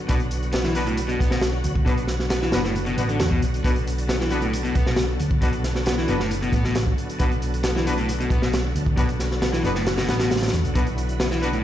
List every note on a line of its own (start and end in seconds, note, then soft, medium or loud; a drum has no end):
0.00 11.64 D3 medium
0.00 11.64 F#3 medium
0.00 11.64 B3 medium
0.00 3.62 F#4 medium
0.09 1.16 B1 loud
0.09 0.19 B2 medium
0.09 0.14 B3 medium
0.09 0.14 D4 medium
0.09 0.14 F#4 medium
0.09 0.14 B4 loud
0.09 kick loud
0.09 closed hi-hat medium
0.20 closed hi-hat soft
0.31 closed hi-hat medium
0.43 closed hi-hat soft
0.52 0.59 B3 loud
0.52 snare loud
0.52 closed hi-hat medium
0.64 0.74 E3 medium
0.64 snare soft
0.75 0.81 B2 medium
0.75 0.84 B3 medium
0.75 0.85 D4 medium
0.75 0.84 F#4 medium
0.75 0.85 B4 loud
0.75 closed hi-hat medium
0.86 0.96 A2 medium
0.86 closed hi-hat soft
0.97 closed hi-hat medium
1.08 1.18 B2 loud
1.08 closed hi-hat soft
1.19 1.60 B1 medium
1.19 1.30 B3 medium
1.19 kick medium
1.19 closed hi-hat medium
1.31 1.41 B2 medium
1.31 snare medium
1.41 snare loud
1.41 closed hi-hat medium
1.64 1.81 D2 medium
1.64 closed hi-hat medium
1.75 kick loud
1.86 2.49 B1 medium
1.86 1.97 B2 medium
1.86 1.92 B3 medium
1.86 1.92 D4 medium
1.86 1.92 F#4 medium
1.86 1.92 B4 medium
1.86 kick loud
1.86 closed hi-hat medium
1.97 closed hi-hat soft
2.07 snare soft
2.07 closed hi-hat medium
2.20 snare soft
2.30 2.37 B3 loud
2.30 snare loud
2.30 closed hi-hat medium
2.42 2.52 E3 medium
2.42 snare soft
2.52 2.93 F#1 medium
2.52 2.59 B2 medium
2.52 2.62 B3 medium
2.52 2.62 D4 medium
2.52 2.62 F#4 medium
2.52 2.62 B4 loud
2.52 snare loud
2.52 closed hi-hat medium
2.64 2.74 A2 medium
2.64 snare soft
2.76 closed hi-hat medium
2.86 2.96 B2 loud
2.86 closed hi-hat soft
2.97 3.19 A1 loud
2.97 3.08 B2 medium
2.97 3.03 B3 medium
2.97 3.03 D4 medium
2.97 3.03 F#4 medium
2.97 3.03 B4 medium
2.97 closed hi-hat medium
3.09 3.19 D3 medium
3.09 closed hi-hat soft
3.20 3.37 E2 medium
3.20 snare loud
3.20 closed hi-hat medium
3.31 3.41 B2 medium
3.31 kick medium
3.42 3.59 B1 loud
3.42 closed hi-hat medium
3.54 closed hi-hat soft
3.64 4.71 B1 loud
3.64 3.75 B2 medium
3.64 3.70 B3 medium
3.64 3.70 D4 medium
3.64 3.70 F#4 medium
3.64 10.74 A4 medium
3.64 3.70 B4 loud
3.64 kick loud
3.64 closed hi-hat medium
3.76 closed hi-hat soft
3.87 closed hi-hat medium
3.98 closed hi-hat soft
4.09 4.15 B3 loud
4.09 snare loud
4.09 closed hi-hat medium
4.20 4.30 E3 medium
4.20 snare soft
4.30 4.37 B2 medium
4.30 4.40 B3 medium
4.30 4.40 D4 medium
4.30 4.40 F#4 medium
4.30 4.40 B4 loud
4.30 closed hi-hat medium
4.42 4.52 A2 medium
4.42 closed hi-hat soft
4.53 closed hi-hat loud
4.64 4.74 B2 loud
4.64 closed hi-hat soft
4.75 5.16 B1 medium
4.75 4.86 B3 medium
4.75 kick loud
4.75 closed hi-hat medium
4.86 4.96 B2 medium
4.86 snare medium
4.96 snare loud
4.96 closed hi-hat medium
5.19 5.37 D2 medium
5.19 closed hi-hat medium
5.31 kick loud
5.42 6.05 B1 loud
5.42 5.53 B2 medium
5.42 5.48 B3 medium
5.42 5.48 D4 medium
5.42 5.48 F#4 medium
5.42 5.48 B4 loud
5.42 kick loud
5.42 closed hi-hat medium
5.53 closed hi-hat soft
5.64 snare soft
5.64 closed hi-hat medium
5.75 snare soft
5.86 5.93 B3 loud
5.86 snare loud
5.86 closed hi-hat medium
5.98 6.08 E3 medium
5.98 snare soft
6.08 6.49 F#1 medium
6.08 6.15 B2 medium
6.08 6.18 B3 medium
6.08 6.18 D4 medium
6.08 6.18 F#4 medium
6.08 6.18 B4 loud
6.08 closed hi-hat medium
6.20 6.30 A2 medium
6.20 snare soft
6.31 closed hi-hat medium
6.42 6.52 B2 loud
6.42 closed hi-hat soft
6.52 6.93 A1 loud
6.52 6.63 B3 medium
6.52 kick medium
6.52 closed hi-hat medium
6.64 6.74 B2 medium
6.64 snare soft
6.75 snare loud
6.75 closed hi-hat medium
6.87 kick medium
6.98 closed hi-hat medium
7.10 closed hi-hat soft
7.19 8.27 B1 loud
7.19 7.31 B2 medium
7.19 7.25 B3 medium
7.19 7.25 D4 medium
7.19 7.25 F#4 medium
7.19 7.25 B4 loud
7.19 kick loud
7.19 closed hi-hat medium
7.32 closed hi-hat soft
7.42 closed hi-hat medium
7.54 closed hi-hat soft
7.63 7.70 B3 loud
7.63 snare loud
7.63 closed hi-hat medium
7.75 7.85 E3 medium
7.75 snare soft
7.86 7.93 B2 medium
7.86 7.96 B3 medium
7.86 7.95 D4 medium
7.86 7.95 F#4 medium
7.86 7.95 B4 loud
7.86 closed hi-hat medium
7.98 8.08 A2 medium
7.98 closed hi-hat soft
8.09 closed hi-hat medium
8.20 8.30 B2 loud
8.20 closed hi-hat soft
8.30 8.71 B1 medium
8.30 8.41 B3 medium
8.30 kick loud
8.30 closed hi-hat medium
8.42 8.52 B2 medium
8.42 snare medium
8.53 snare loud
8.53 closed hi-hat medium
8.75 8.92 D2 medium
8.75 closed hi-hat medium
8.86 kick loud
8.97 9.60 B1 loud
8.97 9.08 B2 medium
8.97 9.03 B3 medium
8.97 9.03 D4 medium
8.97 9.03 F#4 medium
8.97 9.03 B4 loud
8.97 kick loud
8.97 closed hi-hat medium
9.09 closed hi-hat soft
9.20 snare soft
9.20 closed hi-hat medium
9.31 snare soft
9.42 9.48 B3 loud
9.42 snare loud
9.42 closed hi-hat medium
9.53 9.63 E3 medium
9.53 snare soft
9.64 10.04 F#1 medium
9.64 9.70 B2 medium
9.64 9.73 B3 medium
9.64 9.73 D4 medium
9.64 9.73 F#4 medium
9.64 9.73 B4 loud
9.64 closed hi-hat medium
9.75 9.85 A2 medium
9.75 snare soft
9.86 snare loud
9.86 closed hi-hat medium
9.98 10.08 B2 loud
9.98 snare loud
9.98 closed hi-hat medium
10.08 10.49 A1 loud
10.08 10.14 B3 medium
10.08 10.19 B3 medium
10.08 10.14 D4 medium
10.08 10.14 F#4 medium
10.08 10.14 B4 medium
10.08 snare medium
10.08 closed hi-hat medium
10.20 10.30 B2 medium
10.20 snare loud
10.20 closed hi-hat medium
10.31 snare loud
10.31 closed hi-hat medium
10.36 snare medium
10.36 closed hi-hat medium
10.42 snare medium
10.42 closed hi-hat medium
10.48 snare medium
10.48 closed hi-hat medium
10.53 10.62 E2 medium
10.53 closed hi-hat medium
10.64 10.73 B1 loud
10.64 closed hi-hat soft
10.75 11.64 B1 loud
10.75 10.86 B2 medium
10.75 10.81 B3 medium
10.75 10.81 D4 medium
10.75 11.64 E4 medium
10.75 10.81 F#4 medium
10.75 10.81 B4 medium
10.75 kick loud
10.75 closed hi-hat medium
10.86 closed hi-hat soft
10.98 closed hi-hat medium
11.09 closed hi-hat soft
11.20 11.26 B3 loud
11.20 snare loud
11.20 closed hi-hat medium
11.31 11.41 E3 medium
11.31 snare soft
11.42 11.48 B2 medium
11.42 11.51 B3 medium
11.42 11.51 D4 medium
11.42 11.51 F#4 medium
11.42 11.51 B4 loud
11.42 closed hi-hat medium
11.53 11.63 A2 medium
11.53 closed hi-hat soft